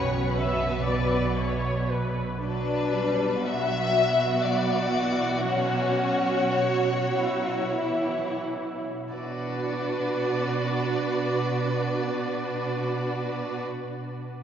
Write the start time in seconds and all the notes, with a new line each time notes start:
Already playing: B1 B2 C#4 B4 C#5
0.37 B3 B4 E5
0.88 D5
1.38 C#5
1.91 B4
2.44 B2 F#3 D4 B4
2.95 G3
3.47 F#3 B3 F#4 E5
4.46 F#3 D5
4.95 E3
5.46 F#3 C#4 C#5
5.99 F#3
6.57 F#4
7.16 E4
7.77 E3 E4
9.10 B2 D4 F#4 B4 D5